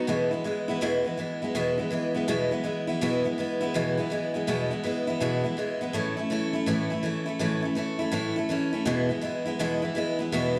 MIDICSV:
0, 0, Header, 1, 2, 480
1, 0, Start_track
1, 0, Key_signature, 4, "major"
1, 0, Tempo, 365631
1, 118, Time_signature, 4, 2, 24, 8
1, 13905, End_track
2, 0, Start_track
2, 0, Title_t, "Steel-string acoustic guitar"
2, 0, Program_c, 0, 25
2, 95, Note_on_c, 0, 40, 82
2, 101, Note_on_c, 0, 47, 87
2, 106, Note_on_c, 0, 52, 81
2, 113, Note_on_c, 0, 56, 87
2, 117, Note_on_c, 0, 59, 95
2, 118, Note_on_c, 0, 64, 90
2, 389, Note_off_c, 0, 64, 0
2, 400, Note_off_c, 0, 59, 0
2, 405, Note_on_c, 0, 64, 50
2, 414, Note_off_c, 0, 56, 0
2, 416, Note_off_c, 0, 40, 0
2, 416, Note_on_c, 0, 59, 45
2, 419, Note_off_c, 0, 47, 0
2, 421, Note_off_c, 0, 52, 0
2, 430, Note_on_c, 0, 56, 44
2, 441, Note_on_c, 0, 52, 43
2, 566, Note_off_c, 0, 52, 0
2, 579, Note_off_c, 0, 56, 0
2, 582, Note_on_c, 0, 52, 62
2, 587, Note_off_c, 0, 64, 0
2, 590, Note_off_c, 0, 59, 0
2, 595, Note_on_c, 0, 56, 71
2, 606, Note_on_c, 0, 59, 62
2, 619, Note_on_c, 0, 64, 69
2, 878, Note_off_c, 0, 64, 0
2, 894, Note_on_c, 0, 64, 68
2, 895, Note_off_c, 0, 59, 0
2, 899, Note_off_c, 0, 52, 0
2, 906, Note_off_c, 0, 56, 0
2, 911, Note_on_c, 0, 59, 55
2, 923, Note_on_c, 0, 56, 52
2, 932, Note_on_c, 0, 52, 51
2, 1060, Note_off_c, 0, 52, 0
2, 1064, Note_off_c, 0, 56, 0
2, 1064, Note_on_c, 0, 40, 86
2, 1068, Note_off_c, 0, 59, 0
2, 1072, Note_off_c, 0, 64, 0
2, 1073, Note_on_c, 0, 47, 95
2, 1075, Note_on_c, 0, 52, 86
2, 1080, Note_on_c, 0, 56, 97
2, 1084, Note_on_c, 0, 59, 93
2, 1089, Note_on_c, 0, 64, 96
2, 1355, Note_off_c, 0, 64, 0
2, 1371, Note_on_c, 0, 64, 56
2, 1373, Note_off_c, 0, 59, 0
2, 1381, Note_off_c, 0, 40, 0
2, 1383, Note_off_c, 0, 56, 0
2, 1385, Note_off_c, 0, 47, 0
2, 1386, Note_off_c, 0, 52, 0
2, 1389, Note_on_c, 0, 59, 53
2, 1399, Note_on_c, 0, 56, 47
2, 1410, Note_on_c, 0, 52, 44
2, 1526, Note_off_c, 0, 52, 0
2, 1542, Note_off_c, 0, 56, 0
2, 1542, Note_on_c, 0, 52, 63
2, 1551, Note_off_c, 0, 64, 0
2, 1554, Note_off_c, 0, 59, 0
2, 1558, Note_on_c, 0, 56, 70
2, 1570, Note_on_c, 0, 59, 68
2, 1580, Note_on_c, 0, 64, 75
2, 1846, Note_off_c, 0, 64, 0
2, 1857, Note_off_c, 0, 59, 0
2, 1860, Note_off_c, 0, 52, 0
2, 1862, Note_on_c, 0, 64, 52
2, 1868, Note_off_c, 0, 56, 0
2, 1872, Note_on_c, 0, 59, 56
2, 1887, Note_on_c, 0, 56, 48
2, 1897, Note_on_c, 0, 52, 49
2, 2022, Note_off_c, 0, 52, 0
2, 2027, Note_off_c, 0, 56, 0
2, 2031, Note_on_c, 0, 40, 92
2, 2032, Note_on_c, 0, 47, 86
2, 2034, Note_off_c, 0, 59, 0
2, 2036, Note_off_c, 0, 64, 0
2, 2038, Note_on_c, 0, 52, 99
2, 2043, Note_on_c, 0, 56, 97
2, 2050, Note_on_c, 0, 59, 104
2, 2055, Note_on_c, 0, 64, 105
2, 2315, Note_off_c, 0, 64, 0
2, 2330, Note_on_c, 0, 64, 53
2, 2331, Note_off_c, 0, 59, 0
2, 2341, Note_off_c, 0, 56, 0
2, 2345, Note_off_c, 0, 40, 0
2, 2345, Note_off_c, 0, 47, 0
2, 2347, Note_on_c, 0, 59, 50
2, 2348, Note_off_c, 0, 52, 0
2, 2357, Note_on_c, 0, 56, 45
2, 2369, Note_on_c, 0, 52, 46
2, 2485, Note_off_c, 0, 52, 0
2, 2500, Note_off_c, 0, 56, 0
2, 2501, Note_on_c, 0, 52, 67
2, 2511, Note_off_c, 0, 64, 0
2, 2512, Note_off_c, 0, 59, 0
2, 2516, Note_on_c, 0, 56, 69
2, 2528, Note_on_c, 0, 59, 69
2, 2538, Note_on_c, 0, 64, 70
2, 2800, Note_off_c, 0, 64, 0
2, 2815, Note_off_c, 0, 59, 0
2, 2815, Note_on_c, 0, 64, 62
2, 2820, Note_off_c, 0, 52, 0
2, 2828, Note_off_c, 0, 56, 0
2, 2831, Note_on_c, 0, 59, 54
2, 2842, Note_on_c, 0, 56, 54
2, 2851, Note_on_c, 0, 52, 47
2, 2982, Note_off_c, 0, 52, 0
2, 2987, Note_off_c, 0, 56, 0
2, 2990, Note_on_c, 0, 40, 89
2, 2992, Note_off_c, 0, 59, 0
2, 2994, Note_off_c, 0, 64, 0
2, 2995, Note_on_c, 0, 47, 94
2, 2998, Note_on_c, 0, 52, 96
2, 3003, Note_on_c, 0, 56, 103
2, 3008, Note_on_c, 0, 59, 95
2, 3012, Note_on_c, 0, 64, 99
2, 3280, Note_off_c, 0, 64, 0
2, 3294, Note_off_c, 0, 59, 0
2, 3295, Note_on_c, 0, 64, 55
2, 3305, Note_off_c, 0, 40, 0
2, 3307, Note_off_c, 0, 56, 0
2, 3308, Note_off_c, 0, 47, 0
2, 3309, Note_off_c, 0, 52, 0
2, 3310, Note_on_c, 0, 59, 56
2, 3323, Note_on_c, 0, 56, 46
2, 3332, Note_on_c, 0, 52, 51
2, 3444, Note_off_c, 0, 52, 0
2, 3455, Note_off_c, 0, 56, 0
2, 3460, Note_on_c, 0, 52, 63
2, 3466, Note_off_c, 0, 59, 0
2, 3471, Note_on_c, 0, 56, 67
2, 3474, Note_off_c, 0, 64, 0
2, 3482, Note_on_c, 0, 59, 63
2, 3493, Note_on_c, 0, 64, 67
2, 3756, Note_off_c, 0, 64, 0
2, 3772, Note_off_c, 0, 59, 0
2, 3772, Note_on_c, 0, 64, 63
2, 3777, Note_off_c, 0, 56, 0
2, 3780, Note_off_c, 0, 52, 0
2, 3788, Note_on_c, 0, 59, 50
2, 3793, Note_on_c, 0, 56, 51
2, 3805, Note_on_c, 0, 52, 50
2, 3947, Note_off_c, 0, 52, 0
2, 3953, Note_off_c, 0, 56, 0
2, 3953, Note_off_c, 0, 64, 0
2, 3955, Note_on_c, 0, 40, 88
2, 3959, Note_on_c, 0, 47, 92
2, 3961, Note_off_c, 0, 59, 0
2, 3962, Note_on_c, 0, 52, 86
2, 3969, Note_on_c, 0, 56, 89
2, 3974, Note_on_c, 0, 59, 98
2, 3976, Note_on_c, 0, 64, 110
2, 4238, Note_off_c, 0, 64, 0
2, 4254, Note_on_c, 0, 64, 54
2, 4255, Note_off_c, 0, 59, 0
2, 4261, Note_off_c, 0, 56, 0
2, 4269, Note_off_c, 0, 40, 0
2, 4270, Note_off_c, 0, 47, 0
2, 4270, Note_on_c, 0, 59, 56
2, 4272, Note_off_c, 0, 52, 0
2, 4277, Note_on_c, 0, 56, 44
2, 4294, Note_on_c, 0, 52, 43
2, 4418, Note_off_c, 0, 52, 0
2, 4434, Note_off_c, 0, 64, 0
2, 4434, Note_on_c, 0, 52, 67
2, 4435, Note_off_c, 0, 56, 0
2, 4443, Note_off_c, 0, 59, 0
2, 4450, Note_on_c, 0, 56, 67
2, 4460, Note_on_c, 0, 59, 76
2, 4470, Note_on_c, 0, 64, 75
2, 4718, Note_off_c, 0, 64, 0
2, 4734, Note_off_c, 0, 59, 0
2, 4734, Note_on_c, 0, 64, 70
2, 4744, Note_off_c, 0, 56, 0
2, 4748, Note_off_c, 0, 52, 0
2, 4750, Note_on_c, 0, 59, 58
2, 4760, Note_on_c, 0, 56, 51
2, 4771, Note_on_c, 0, 52, 54
2, 4910, Note_off_c, 0, 52, 0
2, 4912, Note_off_c, 0, 56, 0
2, 4912, Note_on_c, 0, 40, 91
2, 4915, Note_off_c, 0, 64, 0
2, 4919, Note_on_c, 0, 47, 79
2, 4923, Note_off_c, 0, 59, 0
2, 4926, Note_on_c, 0, 52, 95
2, 4928, Note_on_c, 0, 56, 100
2, 4937, Note_on_c, 0, 59, 96
2, 4939, Note_on_c, 0, 64, 102
2, 5201, Note_off_c, 0, 64, 0
2, 5215, Note_off_c, 0, 59, 0
2, 5217, Note_on_c, 0, 64, 55
2, 5228, Note_off_c, 0, 40, 0
2, 5228, Note_off_c, 0, 56, 0
2, 5231, Note_off_c, 0, 47, 0
2, 5231, Note_on_c, 0, 59, 59
2, 5235, Note_off_c, 0, 52, 0
2, 5243, Note_on_c, 0, 56, 50
2, 5253, Note_on_c, 0, 52, 45
2, 5367, Note_off_c, 0, 52, 0
2, 5383, Note_on_c, 0, 52, 68
2, 5385, Note_off_c, 0, 56, 0
2, 5392, Note_off_c, 0, 59, 0
2, 5396, Note_off_c, 0, 64, 0
2, 5401, Note_on_c, 0, 56, 79
2, 5407, Note_on_c, 0, 59, 76
2, 5423, Note_on_c, 0, 64, 76
2, 5682, Note_off_c, 0, 64, 0
2, 5695, Note_off_c, 0, 59, 0
2, 5697, Note_on_c, 0, 64, 51
2, 5703, Note_off_c, 0, 52, 0
2, 5707, Note_off_c, 0, 56, 0
2, 5711, Note_on_c, 0, 59, 52
2, 5723, Note_on_c, 0, 56, 50
2, 5733, Note_on_c, 0, 52, 45
2, 5866, Note_off_c, 0, 52, 0
2, 5868, Note_off_c, 0, 56, 0
2, 5871, Note_on_c, 0, 40, 86
2, 5873, Note_off_c, 0, 59, 0
2, 5877, Note_off_c, 0, 64, 0
2, 5878, Note_on_c, 0, 47, 94
2, 5882, Note_on_c, 0, 52, 88
2, 5884, Note_on_c, 0, 56, 93
2, 5889, Note_on_c, 0, 59, 95
2, 5900, Note_on_c, 0, 64, 102
2, 6161, Note_off_c, 0, 64, 0
2, 6172, Note_off_c, 0, 59, 0
2, 6176, Note_on_c, 0, 64, 54
2, 6187, Note_off_c, 0, 40, 0
2, 6188, Note_on_c, 0, 59, 56
2, 6189, Note_off_c, 0, 56, 0
2, 6191, Note_off_c, 0, 47, 0
2, 6193, Note_off_c, 0, 52, 0
2, 6204, Note_on_c, 0, 56, 44
2, 6210, Note_on_c, 0, 52, 43
2, 6332, Note_off_c, 0, 52, 0
2, 6343, Note_off_c, 0, 56, 0
2, 6348, Note_on_c, 0, 52, 70
2, 6354, Note_off_c, 0, 59, 0
2, 6357, Note_off_c, 0, 64, 0
2, 6359, Note_on_c, 0, 56, 73
2, 6370, Note_on_c, 0, 59, 71
2, 6385, Note_on_c, 0, 64, 80
2, 6642, Note_off_c, 0, 64, 0
2, 6652, Note_off_c, 0, 59, 0
2, 6658, Note_on_c, 0, 64, 70
2, 6666, Note_off_c, 0, 52, 0
2, 6667, Note_off_c, 0, 56, 0
2, 6668, Note_on_c, 0, 59, 55
2, 6682, Note_on_c, 0, 56, 47
2, 6694, Note_on_c, 0, 52, 50
2, 6825, Note_off_c, 0, 52, 0
2, 6831, Note_off_c, 0, 56, 0
2, 6832, Note_on_c, 0, 40, 81
2, 6835, Note_off_c, 0, 59, 0
2, 6836, Note_on_c, 0, 47, 90
2, 6838, Note_off_c, 0, 64, 0
2, 6841, Note_on_c, 0, 52, 91
2, 6847, Note_on_c, 0, 56, 98
2, 6851, Note_on_c, 0, 59, 94
2, 6855, Note_on_c, 0, 64, 96
2, 7121, Note_off_c, 0, 64, 0
2, 7135, Note_off_c, 0, 59, 0
2, 7137, Note_on_c, 0, 64, 58
2, 7145, Note_off_c, 0, 56, 0
2, 7148, Note_off_c, 0, 40, 0
2, 7150, Note_off_c, 0, 47, 0
2, 7150, Note_on_c, 0, 59, 47
2, 7153, Note_off_c, 0, 52, 0
2, 7161, Note_on_c, 0, 56, 46
2, 7170, Note_on_c, 0, 52, 45
2, 7293, Note_off_c, 0, 52, 0
2, 7308, Note_off_c, 0, 56, 0
2, 7308, Note_on_c, 0, 52, 58
2, 7317, Note_off_c, 0, 64, 0
2, 7318, Note_off_c, 0, 59, 0
2, 7323, Note_on_c, 0, 56, 66
2, 7334, Note_on_c, 0, 59, 72
2, 7343, Note_on_c, 0, 64, 75
2, 7610, Note_off_c, 0, 64, 0
2, 7619, Note_off_c, 0, 59, 0
2, 7626, Note_on_c, 0, 64, 61
2, 7627, Note_off_c, 0, 52, 0
2, 7634, Note_off_c, 0, 56, 0
2, 7635, Note_on_c, 0, 59, 50
2, 7650, Note_on_c, 0, 56, 50
2, 7660, Note_on_c, 0, 52, 48
2, 7784, Note_off_c, 0, 52, 0
2, 7789, Note_on_c, 0, 45, 93
2, 7799, Note_off_c, 0, 56, 0
2, 7799, Note_on_c, 0, 52, 88
2, 7802, Note_off_c, 0, 64, 0
2, 7804, Note_on_c, 0, 57, 94
2, 7806, Note_off_c, 0, 59, 0
2, 7813, Note_on_c, 0, 61, 94
2, 7816, Note_on_c, 0, 64, 97
2, 8081, Note_off_c, 0, 64, 0
2, 8097, Note_on_c, 0, 64, 54
2, 8103, Note_off_c, 0, 61, 0
2, 8107, Note_off_c, 0, 45, 0
2, 8112, Note_off_c, 0, 52, 0
2, 8115, Note_off_c, 0, 57, 0
2, 8119, Note_on_c, 0, 61, 46
2, 8131, Note_on_c, 0, 57, 44
2, 8264, Note_off_c, 0, 57, 0
2, 8269, Note_on_c, 0, 52, 69
2, 8277, Note_off_c, 0, 61, 0
2, 8277, Note_off_c, 0, 64, 0
2, 8280, Note_on_c, 0, 57, 71
2, 8293, Note_on_c, 0, 61, 75
2, 8300, Note_on_c, 0, 64, 79
2, 8559, Note_off_c, 0, 64, 0
2, 8575, Note_on_c, 0, 64, 59
2, 8580, Note_off_c, 0, 61, 0
2, 8587, Note_off_c, 0, 52, 0
2, 8593, Note_off_c, 0, 57, 0
2, 8596, Note_on_c, 0, 61, 57
2, 8609, Note_on_c, 0, 57, 45
2, 8744, Note_off_c, 0, 57, 0
2, 8748, Note_on_c, 0, 45, 84
2, 8750, Note_off_c, 0, 61, 0
2, 8756, Note_off_c, 0, 64, 0
2, 8758, Note_on_c, 0, 52, 91
2, 8760, Note_on_c, 0, 57, 91
2, 8766, Note_on_c, 0, 61, 94
2, 8773, Note_on_c, 0, 64, 97
2, 9044, Note_off_c, 0, 64, 0
2, 9060, Note_on_c, 0, 64, 57
2, 9066, Note_off_c, 0, 45, 0
2, 9066, Note_off_c, 0, 61, 0
2, 9071, Note_off_c, 0, 52, 0
2, 9072, Note_off_c, 0, 57, 0
2, 9081, Note_on_c, 0, 61, 46
2, 9095, Note_on_c, 0, 57, 42
2, 9222, Note_off_c, 0, 57, 0
2, 9225, Note_on_c, 0, 52, 68
2, 9234, Note_off_c, 0, 61, 0
2, 9237, Note_on_c, 0, 57, 63
2, 9239, Note_off_c, 0, 64, 0
2, 9249, Note_on_c, 0, 61, 68
2, 9262, Note_on_c, 0, 64, 77
2, 9511, Note_off_c, 0, 64, 0
2, 9526, Note_on_c, 0, 64, 53
2, 9533, Note_off_c, 0, 61, 0
2, 9545, Note_off_c, 0, 52, 0
2, 9548, Note_on_c, 0, 61, 49
2, 9551, Note_off_c, 0, 57, 0
2, 9564, Note_on_c, 0, 57, 53
2, 9706, Note_off_c, 0, 57, 0
2, 9706, Note_on_c, 0, 45, 89
2, 9712, Note_off_c, 0, 61, 0
2, 9712, Note_off_c, 0, 64, 0
2, 9717, Note_on_c, 0, 52, 98
2, 9721, Note_on_c, 0, 57, 88
2, 9728, Note_on_c, 0, 61, 96
2, 9730, Note_on_c, 0, 64, 86
2, 9994, Note_off_c, 0, 64, 0
2, 10009, Note_on_c, 0, 64, 56
2, 10016, Note_off_c, 0, 61, 0
2, 10025, Note_off_c, 0, 45, 0
2, 10030, Note_off_c, 0, 52, 0
2, 10032, Note_on_c, 0, 61, 46
2, 10033, Note_off_c, 0, 57, 0
2, 10048, Note_on_c, 0, 57, 43
2, 10177, Note_off_c, 0, 57, 0
2, 10177, Note_on_c, 0, 52, 61
2, 10188, Note_off_c, 0, 61, 0
2, 10193, Note_off_c, 0, 64, 0
2, 10193, Note_on_c, 0, 57, 73
2, 10204, Note_on_c, 0, 61, 76
2, 10214, Note_on_c, 0, 64, 73
2, 10471, Note_off_c, 0, 64, 0
2, 10487, Note_on_c, 0, 64, 64
2, 10494, Note_off_c, 0, 61, 0
2, 10500, Note_off_c, 0, 52, 0
2, 10508, Note_off_c, 0, 57, 0
2, 10509, Note_on_c, 0, 61, 57
2, 10524, Note_on_c, 0, 57, 50
2, 10652, Note_off_c, 0, 57, 0
2, 10654, Note_on_c, 0, 45, 97
2, 10660, Note_off_c, 0, 61, 0
2, 10665, Note_on_c, 0, 52, 86
2, 10666, Note_off_c, 0, 64, 0
2, 10668, Note_on_c, 0, 57, 91
2, 10676, Note_on_c, 0, 61, 93
2, 10682, Note_on_c, 0, 64, 104
2, 10957, Note_off_c, 0, 64, 0
2, 10973, Note_on_c, 0, 64, 60
2, 10978, Note_off_c, 0, 45, 0
2, 10978, Note_off_c, 0, 61, 0
2, 10983, Note_off_c, 0, 52, 0
2, 10985, Note_off_c, 0, 57, 0
2, 10994, Note_on_c, 0, 61, 53
2, 11011, Note_on_c, 0, 57, 49
2, 11143, Note_off_c, 0, 57, 0
2, 11144, Note_on_c, 0, 52, 63
2, 11154, Note_off_c, 0, 61, 0
2, 11154, Note_off_c, 0, 64, 0
2, 11159, Note_on_c, 0, 57, 74
2, 11170, Note_on_c, 0, 61, 73
2, 11181, Note_on_c, 0, 64, 81
2, 11440, Note_off_c, 0, 64, 0
2, 11455, Note_off_c, 0, 61, 0
2, 11456, Note_on_c, 0, 64, 57
2, 11463, Note_off_c, 0, 52, 0
2, 11470, Note_off_c, 0, 57, 0
2, 11470, Note_on_c, 0, 61, 53
2, 11489, Note_on_c, 0, 57, 47
2, 11624, Note_on_c, 0, 40, 92
2, 11628, Note_on_c, 0, 47, 100
2, 11632, Note_off_c, 0, 64, 0
2, 11635, Note_on_c, 0, 52, 85
2, 11638, Note_off_c, 0, 57, 0
2, 11640, Note_off_c, 0, 61, 0
2, 11643, Note_on_c, 0, 56, 103
2, 11645, Note_on_c, 0, 59, 105
2, 11648, Note_on_c, 0, 64, 98
2, 11915, Note_off_c, 0, 64, 0
2, 11930, Note_on_c, 0, 64, 52
2, 11932, Note_off_c, 0, 59, 0
2, 11941, Note_off_c, 0, 56, 0
2, 11942, Note_off_c, 0, 40, 0
2, 11944, Note_off_c, 0, 47, 0
2, 11948, Note_off_c, 0, 52, 0
2, 11948, Note_on_c, 0, 59, 47
2, 11956, Note_on_c, 0, 56, 48
2, 11972, Note_on_c, 0, 52, 45
2, 12081, Note_off_c, 0, 52, 0
2, 12092, Note_off_c, 0, 56, 0
2, 12096, Note_on_c, 0, 52, 73
2, 12108, Note_off_c, 0, 59, 0
2, 12108, Note_on_c, 0, 56, 71
2, 12112, Note_off_c, 0, 64, 0
2, 12124, Note_on_c, 0, 59, 74
2, 12136, Note_on_c, 0, 64, 77
2, 12397, Note_off_c, 0, 64, 0
2, 12411, Note_off_c, 0, 59, 0
2, 12413, Note_on_c, 0, 64, 66
2, 12418, Note_off_c, 0, 52, 0
2, 12424, Note_off_c, 0, 56, 0
2, 12427, Note_on_c, 0, 59, 56
2, 12442, Note_on_c, 0, 56, 56
2, 12448, Note_on_c, 0, 52, 51
2, 12584, Note_off_c, 0, 52, 0
2, 12592, Note_off_c, 0, 56, 0
2, 12592, Note_off_c, 0, 64, 0
2, 12593, Note_on_c, 0, 40, 89
2, 12596, Note_on_c, 0, 47, 93
2, 12597, Note_off_c, 0, 59, 0
2, 12600, Note_on_c, 0, 52, 88
2, 12607, Note_on_c, 0, 56, 95
2, 12612, Note_on_c, 0, 59, 106
2, 12612, Note_on_c, 0, 64, 99
2, 12875, Note_off_c, 0, 64, 0
2, 12885, Note_off_c, 0, 59, 0
2, 12891, Note_on_c, 0, 64, 59
2, 12897, Note_off_c, 0, 56, 0
2, 12901, Note_on_c, 0, 59, 45
2, 12905, Note_off_c, 0, 40, 0
2, 12907, Note_off_c, 0, 47, 0
2, 12909, Note_off_c, 0, 52, 0
2, 12913, Note_on_c, 0, 56, 44
2, 12925, Note_on_c, 0, 52, 53
2, 13044, Note_off_c, 0, 52, 0
2, 13060, Note_on_c, 0, 52, 69
2, 13061, Note_off_c, 0, 56, 0
2, 13071, Note_off_c, 0, 59, 0
2, 13071, Note_off_c, 0, 64, 0
2, 13076, Note_on_c, 0, 56, 73
2, 13087, Note_on_c, 0, 59, 75
2, 13098, Note_on_c, 0, 64, 84
2, 13359, Note_off_c, 0, 64, 0
2, 13375, Note_on_c, 0, 64, 59
2, 13376, Note_off_c, 0, 59, 0
2, 13378, Note_off_c, 0, 52, 0
2, 13383, Note_off_c, 0, 56, 0
2, 13392, Note_on_c, 0, 59, 57
2, 13399, Note_on_c, 0, 56, 49
2, 13413, Note_on_c, 0, 52, 47
2, 13548, Note_off_c, 0, 52, 0
2, 13551, Note_on_c, 0, 40, 92
2, 13552, Note_off_c, 0, 56, 0
2, 13552, Note_off_c, 0, 64, 0
2, 13554, Note_on_c, 0, 47, 99
2, 13555, Note_off_c, 0, 59, 0
2, 13564, Note_on_c, 0, 52, 104
2, 13568, Note_on_c, 0, 56, 90
2, 13571, Note_on_c, 0, 59, 93
2, 13577, Note_on_c, 0, 64, 107
2, 13834, Note_off_c, 0, 64, 0
2, 13847, Note_off_c, 0, 59, 0
2, 13850, Note_on_c, 0, 64, 52
2, 13861, Note_off_c, 0, 56, 0
2, 13863, Note_off_c, 0, 40, 0
2, 13863, Note_on_c, 0, 59, 48
2, 13864, Note_off_c, 0, 47, 0
2, 13866, Note_off_c, 0, 52, 0
2, 13905, Note_off_c, 0, 59, 0
2, 13905, Note_off_c, 0, 64, 0
2, 13905, End_track
0, 0, End_of_file